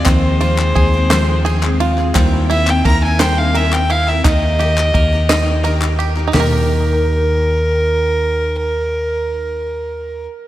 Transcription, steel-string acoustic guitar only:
X:1
M:6/8
L:1/16
Q:3/8=57
K:Eb
V:1 name="Steel-string acoustic guitar"
[E,F,A,CA]2 [F,A,CA] [A,CA]2 [A,CA] [E,F,A,CA]2 [F,A,CA] [A,CA]2 [A,CA] | [G,C=EB]2 [G,CEB] [CEB]2 [CEB] [G,CEB]2 [G,CEB] [CEB]2 [CEB] | [E,EGB]2 [E,EGB] [EGB]2 [EGB] [E,EGB]2 [E,EGB] [EGB]2 [EGB] | [E,EGB]12- |
[E,EGB]12 |]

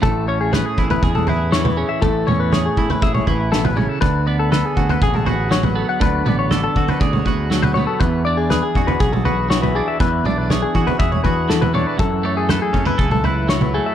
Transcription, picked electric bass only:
X:1
M:4/4
L:1/16
Q:1/4=120
K:A
V:1 name="Picked electric bass" clef=bass
A,,,6 A,,,2 E,,8 | A,,,2 E,,4 A,, z A,,,2 A,,,6 | D,,6 D,,2 A,,,8 | D,,2 A,,,4 D, z D,,2 D,,6 |
E,,6 E,,2 B,,,8 | E,,2 B,,,4 E, z E,,2 E,,6 | F,,6 F,,2 C,,8 |]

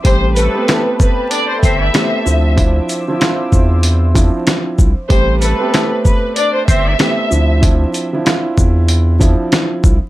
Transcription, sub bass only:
X:1
M:4/4
L:1/16
Q:"Swing 16ths" 1/4=95
K:Am
V:1 name="Sub bass" clef=bass
A,,,3 z6 z G,,,2 z2 D,,2- | D,,2 z4 E,,4- E,, z3 C,, z | A,,,3 z6 z G,,,2 z2 D,,2- | D,,2 z4 E,,4- E,, z3 C,, z |]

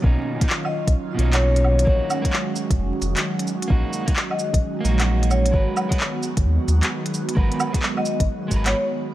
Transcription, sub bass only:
X:1
M:4/4
L:1/16
Q:"Swing 16ths" 1/4=131
K:Gb
V:1 name="Sub bass" clef=bass
=B,,, z6 B,,, z2 B,,,6 | B,,, z6 B,,, F,,, z F,,, z4 z | B,,, z6 B,,, z2 B,,,6 | A,,, z6 A,,, E,, z E,, z4 z |
A,,, z6 A,,, z2 A,,,2 z4 |]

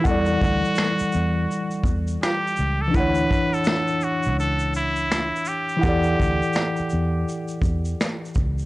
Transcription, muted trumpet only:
X:1
M:4/4
L:1/16
Q:"Swing 16ths" 1/4=83
K:Edor
V:1 name="Muted trumpet"
F8- F3 z G3 A | B3 A3 F2 A2 E4 G2- | G8- G2 z6 |]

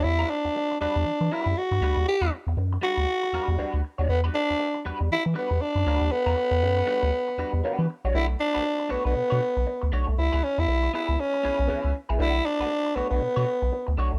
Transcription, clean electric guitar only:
X:1
M:4/4
L:1/16
Q:"Swing 16ths" 1/4=118
K:Edor
V:1 name="Clean electric guitar"
z [G,DFB]2 z3 [G,DFB]2 z2 [G,DFB]2 z2 [G,DFB]2 | z [G,DFB]2 z3 [G,DFB]2 z2 [G,DFB]2 [G,DFB]2 z [G,DFc] | z [G,DFB]2 z3 [G,DFB]2 z2 [G,DFB]2 z2 [G,DFB]2 | z [G,DFB]2 z3 [G,DFB]2 z2 [G,DFB]2 [G,DFB]2 z [G,DFc] |
[A,DFB]2 z [A,DFB] z2 [A,DFc] [A,DFB] z [A,DFc]2 z3 [A,DFc]2 | z [B,E^GB]2 z3 [B,EGB]2 z2 [B,EGB]2 [B,EGB]2 z [B,EGB] | [A,DFB]2 z [A,DFB] z2 [A,DFc] [A,DFB] z [A,DFc]2 z3 [A,DFc]2 |]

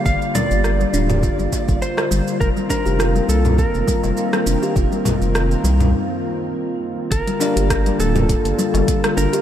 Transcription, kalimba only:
X:1
M:4/4
L:1/16
Q:"Swing 16ths" 1/4=102
K:Gm
V:1 name="Kalimba"
B,2 G, z2 G, D G F G, B,4 G, z | z G, D G F G, B,4 G, z2 G, D G | F G, B,4 G, z8 z | z G, D G F G, B,4 G, z2 G, D G |]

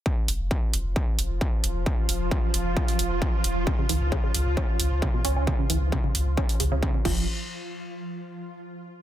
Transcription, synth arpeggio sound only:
X:1
M:4/4
L:1/16
Q:1/4=133
K:Dblyd
V:1 name="Synth arpeggio sound" clef=bass
z16 | z16 | D, D, _F, z D, D, z2 D z3 D, =B,, D D | D, D, _F, z D, D, z2 D z D, D, D, D, =F,2 |
z16 |]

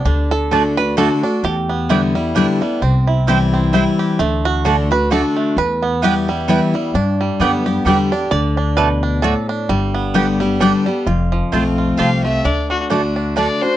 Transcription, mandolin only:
X:1
M:3/4
L:1/8
Q:"Swing" 1/4=131
K:Dmix
V:1 name="Mandolin"
z2 [A,Fda] z [A,Fda] z | z2 [B,Edg] z [B,Edg] z | z2 [CEcg] z [CEcg] z | z2 [A,Fda] z [A,Fda] z |
z2 [B,EBg] z [B,EBg] z | z2 [B,Gdg] z [B,Gdg] z | z2 [A,Fda] z [A,Fda] z | z2 [B,Gdg] z [B,Gdg] z |
z2 [C=Fca] z [CFca] z | z2 [A,Fda] z [A,Fda] z |]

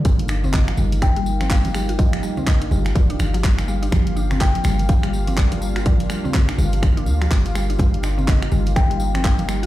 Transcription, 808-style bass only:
X:1
M:4/4
L:1/8
Q:"Swing 16ths" 1/4=124
K:Eblyd
V:1 name="808-style bass" clef=bass
G,,,3 G,,,4- G,,,- | G,,, z2 G,,, D,,, G,,,3 | G,,,3 G,,,4- G,,,- | G,,, z2 G,,,2 D,, G,,,2 |
G,,,3 G,,,4- G,,, |]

